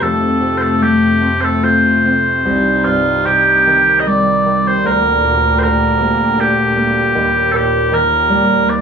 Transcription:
Already playing: string section C3, harp A#3 D#4 G4
0.02 harp F2, string section F2 A3, bagpipes A4
0.41 harp C3
0.57 bagpipes A4 C5
0.81 harp A3, bagpipes G4
1.21 harp C4
1.41 bagpipes A4 C5
1.63 harp F4, bagpipes C5
2.06 harp C4
2.45 harp C2, string section G3 D#4
2.85 harp G2, bagpipes F4
3.26 harp C3, bagpipes G4
3.66 harp D#3
4.00 bagpipes D#5
4.06 harp G3, bagpipes D5
4.46 harp D#3
4.67 bagpipes C5
4.84 string section D2 A#2 D3, harp D2, bagpipes A#4
5.23 harp A#2
5.59 bagpipes A#4 C5
5.64 harp D3
6.00 harp A#3
6.38 harp D4, bagpipes G4
6.77 harp A#3
7.15 harp D#2, string section D#2
7.52 harp A#2, bagpipes A4
7.56 bagpipes G4
7.91 harp D#3, bagpipes A#4
8.29 harp G3
8.67 harp A#3, bagpipes D5

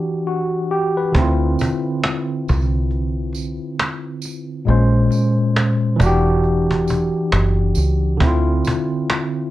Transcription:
Already playing: tine electric piano E3 D4 F#4 G4
0.27 tine electric piano F#4
0.71 tine electric piano G4
0.97 tine electric piano B4
1.12 fingered electric bass D2, tine electric piano D3 C4, cajon bass
1.19 tine electric piano E4 F4
1.59 cajon bass, tambourine
2.03 cajon slap
2.48 fingered electric bass C2, cajon bass, tambourine
2.91 cajon slap
3.33 cajon slap, tambourine
3.80 cajon slap
4.22 cajon slap, tambourine
4.65 fingered electric bass A#1, tine electric piano A#2 G#3 C#4, cajon slap
4.70 tine electric piano C5
5.11 cajon slap, tambourine
5.56 cajon slap
5.96 tine electric piano E3 D4, cajon bass
6.00 fingered electric bass E1, tine electric piano F#4, tambourine
6.06 tine electric piano G4
6.44 cajon slap
6.71 cajon bass
6.88 cajon bass, tambourine
7.32 fingered electric bass F#1, cajon slap
7.75 fingered electric bass C#2, cajon slap, tambourine
8.17 fingered electric bass D2, tine electric piano D3 C4, cajon bass
8.24 tine electric piano E4 F4
8.64 cajon bass, tambourine
9.10 cajon slap

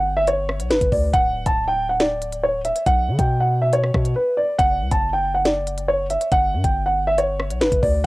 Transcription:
Already playing: 808-style bass G1, grand piano F#5
0.17 grand piano E5
0.27 grand piano C#5, closed hi-hat
0.49 cross-stick
0.60 808-style bass B1, closed hi-hat
0.70 808-style bass G1, grand piano B4, snare, closed hi-hat
0.81 808-style bass G1, kick, closed hi-hat
0.92 808-style bass D2, grand piano D5, kick, open hi-hat
1.13 808-style bass D1, grand piano F#5, kick, closed hi-hat
1.46 808-style bass D1, grand piano A5, kick, closed hi-hat
1.68 grand piano G5
1.89 grand piano F#5
2.00 grand piano D5, snare, closed hi-hat
2.22 closed hi-hat
2.32 closed hi-hat
2.43 grand piano C#5
2.65 grand piano E5, closed hi-hat
2.76 closed hi-hat
2.86 808-style bass B1, grand piano F#5, kick, closed hi-hat
3.08 808-style bass D3
3.19 808-style bass B2, grand piano G5, kick, closed hi-hat
3.40 grand piano F#5
3.62 grand piano E5
3.73 grand piano C#5, closed hi-hat
3.84 cross-stick
3.94 808-style bass B2, kick, cross-stick
4.05 closed hi-hat
4.16 grand piano B4
4.37 grand piano D5
4.59 808-style bass F#1, grand piano F#5, kick, closed hi-hat
4.81 808-style bass C#2
4.91 808-style bass F#1, grand piano A5, kick, closed hi-hat
5.13 grand piano G5
5.34 grand piano F#5
5.45 grand piano D5, snare, closed hi-hat
5.67 closed hi-hat
5.78 closed hi-hat
5.88 grand piano C#5
6.10 grand piano E5, closed hi-hat
6.21 closed hi-hat
6.32 808-style bass G1, grand piano F#5, kick, closed hi-hat
6.53 808-style bass G2
6.64 808-style bass G1, grand piano G5, kick, closed hi-hat
6.86 grand piano F#5
7.07 grand piano E5
7.18 grand piano C#5, closed hi-hat
7.40 cross-stick
7.50 808-style bass B1, closed hi-hat
7.61 808-style bass G1, grand piano B4, snare, closed hi-hat
7.72 808-style bass G1, kick, closed hi-hat
7.83 808-style bass D2, grand piano D5, kick, open hi-hat

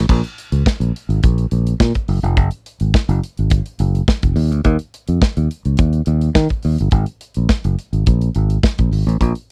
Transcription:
0.09 fingered electric bass A#1, kick, crash
0.24 closed hi-hat
0.38 closed hi-hat
0.52 fingered electric bass C#2, closed hi-hat
0.66 kick, snare
0.80 fingered electric bass A#1, closed hi-hat
0.96 closed hi-hat
1.09 fingered electric bass G#1, closed hi-hat
1.23 fingered electric bass A#1, kick, closed hi-hat
1.38 closed hi-hat
1.51 fingered electric bass A#1, closed hi-hat
1.67 closed hi-hat
1.80 fingered electric bass A#2, kick, snare
1.95 kick, closed hi-hat
2.08 fingered electric bass F#1, open hi-hat
2.23 fingered electric bass F1, closed hi-hat
2.37 fingered electric bass F#1, kick, closed hi-hat
2.51 closed hi-hat
2.66 closed hi-hat
2.80 fingered electric bass G#1, closed hi-hat
2.94 kick, snare
3.09 fingered electric bass F#1, closed hi-hat
3.24 closed hi-hat
3.37 fingered electric bass G#1, closed hi-hat
3.50 kick, closed hi-hat
3.66 closed hi-hat
3.79 fingered electric bass F#1, closed hi-hat
3.95 closed hi-hat
4.08 kick, snare
4.23 fingered electric bass F1, kick, closed hi-hat
4.36 fingered electric bass D#2, open hi-hat
4.51 fingered electric bass D2, closed hi-hat
4.64 fingered electric bass D#2, kick, closed hi-hat
4.79 closed hi-hat
4.94 closed hi-hat
5.08 fingered electric bass F2, closed hi-hat
5.22 kick, snare
5.37 fingered electric bass D#2, closed hi-hat
5.51 closed hi-hat
5.65 fingered electric bass C#2, closed hi-hat
5.77 fingered electric bass D#2, kick, closed hi-hat
5.93 closed hi-hat
6.06 fingered electric bass D#2, closed hi-hat
6.21 closed hi-hat
6.35 fingered electric bass D#3, kick, snare
6.49 kick, closed hi-hat
6.63 fingered electric bass D#2, open hi-hat
6.78 fingered electric bass G1, closed hi-hat
6.91 fingered electric bass G#1, kick, closed hi-hat
7.06 closed hi-hat
7.21 closed hi-hat
7.34 fingered electric bass A#1, closed hi-hat
7.49 kick, snare
7.64 fingered electric bass F#1, closed hi-hat
7.79 closed hi-hat
7.93 fingered electric bass G#1, closed hi-hat
8.06 fingered electric bass A#1, kick, closed hi-hat
8.21 closed hi-hat
8.35 fingered electric bass G#1, closed hi-hat
8.50 closed hi-hat
8.63 kick, snare
8.78 fingered electric bass A#1, kick, closed hi-hat
8.91 fingered electric bass G#1, open hi-hat
9.07 fingered electric bass A1, closed hi-hat
9.21 fingered electric bass A#1, kick, closed hi-hat
9.35 closed hi-hat

